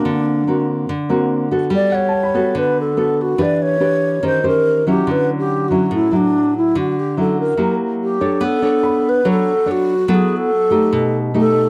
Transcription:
<<
  \new Staff \with { instrumentName = "Grand piano" } { \time 4/4 \key d \major \tempo 4 = 143 r1 | r8 fis''16 a''16 b''2.~ | b''8. r2. r16 | r1 |
r1 | \key b \minor r4 b''2.~ | b''8 r2. r8 | }
  \new Staff \with { instrumentName = "Alto flute" } { \time 4/4 \key d \major d'4. r2 r8 | d''8 cis''4. b'8 a'4 fis'8 | \tuplet 3/2 { d''8 d''16 cis''8.~ } cis''4 c''8 bes'4 g'8 | \tuplet 3/2 { b'8. r16 g'8~ g'8 fis'4 } e'8 d'4 e'8 |
fis'8 g'8 a'8 bes'4. g'4 | \key b \minor a'4. b'8 a'4 fis'4 | gis'8 a'2 r8 a'4 | }
  \new Staff \with { instrumentName = "Nylon-string guitar" } { \time 4/4 \key d \major << { <bes c' fis'>4 <bes c' fis'>4 r8 <bes c' fis'>4 <b fis' a'>8~ | <b fis' a'>4 r8 <b fis' a'>4. <b fis' a'>4 | <d' g' b'>4 <d' g' b'>4 <cis' g' c''>8 <cis' g' c''>4 <fis cis' e'>8~ | <fis cis' e'>4. <fis cis' e'>4 <fis e'>4.~ |
<fis e'>8 r8 <fis cis' e'>4 <ais e' g'>4. <d' a' cis''>8~ | \key b \minor <d' a' cis''>8 <d' a' cis''>4. <d' a' cis''>8 r8 <d' a' cis''>8 r8 | <b e' a'>4 r8 <a dis' g'>4. <a dis' g'>4 | } \\ { d2 d2 | g2 d2 | e2 ees2 | d2 a,2 |
d2 fis2 | b2 fis2 | fis2 b,2 | } >> }
>>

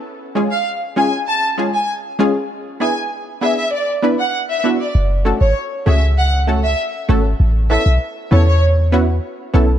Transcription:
<<
  \new Staff \with { instrumentName = "Violin section" } { \time 4/4 \key fis \minor \tempo 4 = 98 r8. eis''16 r8 gis''16 r16 a''16 r8 gis''16 r4 | r8 gis''16 r8. e''16 e''16 d''16 r8 fis''16 r16 e''16 r16 d''16 | r8. cis''16 r8 e''16 r16 fis''16 r8 e''16 r4 | r8 e''16 r8. cis''16 cis''16 r2 | }
  \new Staff \with { instrumentName = "Synth stab" } { \time 4/4 \key fis \minor r8 <gis cis' eis' gis'>8 r8 <gis cis' eis' gis'>8 r8 <gis cis' eis' gis'>8 r8 <gis cis' eis' gis'>8 | r8 <b d' e' gis'>8 r8 <b d' e' gis'>8 r8 <b d' e' b'>8 r8 <b d' e' fis'>8 | r8 <a cis' fis' a'>8 r8 <a cis' fis' gis'>8 r8 <a cis' fis' a'>8 r8 <a cis' fis' a'>8 | r8 <b cis' e' a'>8 r8 <b cis' e' a'>8 r8 <b cis' e' fis'>8 r8 <b cis' e' a'>8 | }
  \new Staff \with { instrumentName = "808-style bass" } { \clef bass \time 4/4 \key fis \minor r1 | r1 | fis,,8. gis,,16 r8 cis,4. r8 gis,,8 | a,,8. b,,16 r8 e,4. r8 b,,8 | }
>>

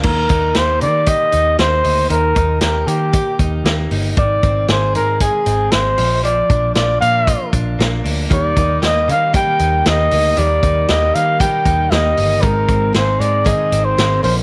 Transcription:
<<
  \new Staff \with { instrumentName = "Trumpet" } { \time 4/4 \key ees \major \tempo 4 = 116 bes'4 c''8 d''8 ees''4 c''4 | bes'4 bes'8 g'4 r4. | d''4 c''8 bes'8 aes'4 c''4 | d''4 d''8 f''4 r4. |
d''4 ees''8 f''8 g''4 ees''4 | d''4 ees''8 f''8 g''4 ees''4 | bes'4 c''8 d''8 ees''8. c''8. c''8 | }
  \new Staff \with { instrumentName = "Clean electric guitar" } { \time 4/4 \key ees \major ees8 ees'8 g'8 bes8 g'8 ees'8 bes8 ees'8 | ees8 ees'8 g'8 bes8 g'8 ees'8 bes8 ees'8 | ees8 c'8 aes'8 aes8 aes'8 c'8 aes8 f8 | f8 d'8 f'8 bes8 f'8 d'8 bes8 d'8 |
ees8 ees'8 g'8 bes8 g'8 ees'8 bes8 ees'8 | ees8 ees'8 g'8 bes8 g'8 ees'8 bes8 ees'8 | ees8 c'8 aes'8 aes8 aes'8 c'8 aes8 f8 | }
  \new Staff \with { instrumentName = "Steel-string acoustic guitar" } { \clef bass \time 4/4 \key ees \major r1 | r1 | r1 | r1 |
<ees g bes ees'>8 <g bes ees'>8 <ees g bes ees'>4 <ees g bes ees'>4 <ees g bes ees'>8 <g bes ees'>8 | <ees g bes ees'>4 <ees g bes ees'>4 <ees g bes ees'>4 <ees g bes ees'>4 | <aes, ees aes c' ees'>4 <ees aes c' ees'>4 <aes, ees aes c' ees'>4 <ees aes c' ees'>8 <bes, d f bes d'>8 | }
  \new Staff \with { instrumentName = "Picked electric bass" } { \clef bass \time 4/4 \key ees \major ees,8 ees,8 ees,8 ees8. r16 ees,8 ees,8 d,8 | ees,8 ees,8 ees,8 ees8. r16 ees,8 ees,8 g,,8 | aes,,8 aes,,8 aes,,8 aes,8. r16 aes,,8 aes,,8 bes,,8~ | bes,,8 bes,,8 bes,,8 bes,8. r16 bes,,8 bes,,8 d,8 |
ees,8 ees,8 ees,8 ees8. r16 ees,8 ees,8 d,8 | ees,8 ees,8 ees,8 ees8. r16 ees,8 ees,8 g,,8 | aes,,8 aes,,8 aes,,8 aes,8. r16 aes,,8 aes,,8 bes,,8 | }
  \new DrumStaff \with { instrumentName = "Drums" } \drummode { \time 4/4 <cymc bd>8 <hh bd>8 <hh sn>8 hh8 <hh bd>8 hh8 <hh sn>8 hho8 | hh8 <hh bd>8 <hh sn>8 hh8 <hh bd>8 <hh bd>8 <hh sn>8 hho8 | <hh bd>8 <hh bd>8 <hh sn>8 hh8 <hh bd>8 hh8 <hh sn>8 hho8 | hh8 <hh bd>8 <hh sn>8 hh8 <hh bd>8 <hh bd>8 <hh sn>8 hho8 |
<hh bd>8 <hh bd>8 <hh sn>8 hh8 <hh bd>8 hh8 <hh sn>8 hho8 | hh8 <hh bd>8 <hh sn>8 hh8 <hh bd>8 <hh bd>8 <hh sn>8 hho8 | <hh bd>8 <hh bd>8 <hh sn>8 hh8 <hh bd>8 hh8 <hh sn>8 hho8 | }
>>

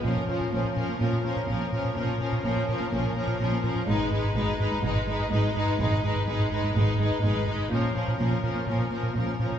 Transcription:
<<
  \new Staff \with { instrumentName = "Violin section" } { \time 4/4 \key bes \phrygian \tempo 4 = 125 bes'8 bes'8 bes'8 bes'8 bes'8 bes'8 bes'8 bes'8 | bes'8 bes'8 bes'8 bes'8 bes'8 bes'8 bes'8 bes'8 | ces''8 ces''8 ces''8 ces''8 ces''8 ces''8 ces''8 ces''8 | ces''8 ces''8 ces''8 ces''8 ces''8 ces''8 ces''8 ces''8 |
bes'8 bes'8 bes'8 bes'8 bes'8 bes'8 bes'8 bes'8 | }
  \new Staff \with { instrumentName = "Violin section" } { \time 4/4 \key bes \phrygian des'8 des'8 des'8 des'8 des'8 des'8 des'8 des'8 | des'8 des'8 des'8 des'8 des'8 des'8 des'8 des'8 | ees'8 ees'8 ees'8 ees'8 ees'8 ees'8 ees'8 ees'8 | ees'8 ees'8 ees'8 ees'8 ees'8 ees'8 ees'8 ees'8 |
des'8 des'8 des'8 des'8 des'8 des'8 des'8 des'8 | }
  \new Staff \with { instrumentName = "Viola section" } { \clef bass \time 4/4 \key bes \phrygian f8 f8 f8 f8 f8 f8 f8 f8 | f8 f8 f8 f8 f8 f8 f8 f8 | aes8 aes8 aes8 aes8 aes8 aes8 aes8 aes8 | aes8 aes8 aes8 aes8 aes8 aes8 aes8 aes8 |
f8 f8 f8 f8 f8 f8 f8 f8 | }
  \new Staff \with { instrumentName = "Analog synth bass" } { \clef bass \time 4/4 \key bes \phrygian bes,16 bes,16 bes,16 bes,16 bes16 bes,16 bes,16 bes16 bes,16 bes,16 bes16 bes,16 bes,16 bes16 bes,16 bes,16 | bes,16 bes,16 bes,16 bes,16 bes16 bes,16 bes,16 bes16 bes,16 bes,16 bes16 bes,16 bes,16 bes16 bes,16 bes,16 | aes,16 aes,16 aes,16 aes,16 aes16 aes,16 aes,16 aes16 aes,16 aes,16 aes16 aes,16 aes,16 aes16 aes,16 aes,16 | aes,16 aes,16 aes,16 aes,16 aes16 aes,16 aes,16 aes16 aes,16 aes,16 aes16 aes,16 aes,16 aes16 aes,16 aes,16 |
bes,16 bes,16 bes,16 bes,16 bes16 bes,16 bes,16 bes16 bes,16 bes,16 bes16 bes,16 bes,16 bes16 bes,16 bes,16 | }
  \new Staff \with { instrumentName = "Cello section" } { \clef bass \time 4/4 \key bes \phrygian bes,4 bes,4 bes,4 bes,4 | bes,4 bes,4 bes,4 bes,4 | aes,4 aes,4 aes,4 aes,4 | aes,4 aes,4 aes,4 aes,4 |
bes,4 bes,4 bes,4 bes,4 | }
  \new Staff \with { instrumentName = "Double bass section" } { \clef bass \time 4/4 \key bes \phrygian bes,,4 bes,,4 bes,,4 bes,,4 | bes,,4 bes,,4 bes,,4 bes,,4 | aes,,4 aes,,4 aes,,4 aes,,4 | aes,,4 aes,,4 aes,,4 aes,,4 |
bes,,4 bes,,4 bes,,4 bes,,4 | }
>>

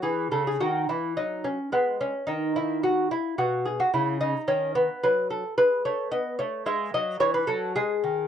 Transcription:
<<
  \new Staff \with { instrumentName = "Lute" } { \time 3/4 \key b \mixolydian \tempo 4 = 109 gis'8 a'16 gis'16 fis'8 e'8 dis'8 cis'8 | b8 cis'8 dis'8 e'8 fis'8 e'8 | fis'8 gis'16 fis'16 e'8 dis'8 cis'8 b8 | \key e \major b'8 a'8 b'8 cis''8 dis''8 cis''8 |
e''8 dis''8 cis''16 b'16 a'8 gis'4 | }
  \new Staff \with { instrumentName = "Lute" } { \clef bass \time 3/4 \key b \mixolydian e8 cis8 dis8 e8 fis4 | gis4 dis2 | b,4 cis4 dis4 | \key e \major fis4 gis8 a8 b8 a8 |
gis8 fis8 e8 fis8 gis8 dis8 | }
>>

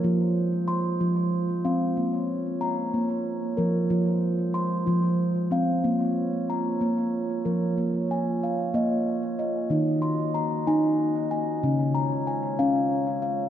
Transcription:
<<
  \new Staff \with { instrumentName = "Glass harmonica" } { \time 6/8 \key bes \minor \tempo 4. = 62 << { <aes c''>2. | <bes des''>2. | <aes c''>2. | <bes des''>2. |
<bes des''>2. | <bes ees''>2. | <aes des''>2. | } \\ { f'2.~ | f'2.~ | f'2. | f'2. |
f'2. | ges'2. | f'2. | } >> }
  \new Staff \with { instrumentName = "Steel tongue drum" } { \time 6/8 \key bes \minor << { bes'8 r8 c'''4. f''8~ | f''8 r8 bes''4. bes'8~ | bes'8 r8 c'''4. f''8~ | f''8 r8 bes''4. bes'8~ |
bes'8 aes''8 f''4. ees''8~ | ees''8 c'''8 bes''4. aes''8~ | aes''8 bes''8 aes''4. f''8 | } \\ { f'4 r8 f'4 r8 | bes4 r8 bes4 r8 | f'4 r8 f'4 r8 | r2. |
bes4 r8 ees''4 r8 | ees'4 r8 aes''4 r8 | des'4 r8 f''4 r8 | } >> }
  \new Staff \with { instrumentName = "Steel tongue drum" } { \clef bass \time 6/8 \key bes \minor f4. f4 c'8 | r2 r8 f8 | f4. f4 c'8 | bes4. bes4 f8 |
r4. bes4. | ees4. ees'4. | des4. des'4. | }
>>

